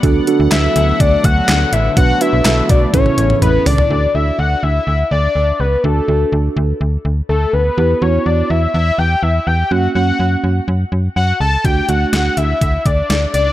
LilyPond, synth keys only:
\new Staff \with { instrumentName = "Synth keys" } { \time 4/4 \key d \major \tempo 4 = 124 <d' fis' a'>8 <d' fis' a'>4 r2 r8 | <d' fis' b'>8 <d' fis' b'>4 r8 <cis' e' a'>4. r8 | <d' fis' a'>8 <d' fis' a'>4 r2 r8 | <d' fis' a'>8 <d' fis' a'>4 r2 r8 |
<b e' g'>8 <b e' fis'>4 r2 r8 | <ais cis' fis'>8 <ais cis' fis'>4 r2 r8 | <a d' fis'>8 <a d' fis'>4 r2 r8 | }